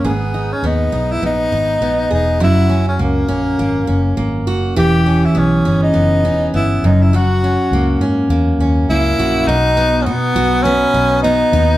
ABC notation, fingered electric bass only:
X:1
M:4/4
L:1/8
Q:"Swing 16ths" 1/4=102
K:B
V:1 name="Fingered electric bass" clef=bass
G,,,2 D,, B,,, A,,, G,,, A,,, E,,, | F,,,2 C,, A,,, G,,, F,,, G,,, F,,, | E,,,2 B,,, =G,,, F,,, E,,, G,,, F,,,- | F,,,2 C,, G,, E,, D,, C,, A,,, |
B,,,2 B,, B,,,2 B,,,2 D,, |]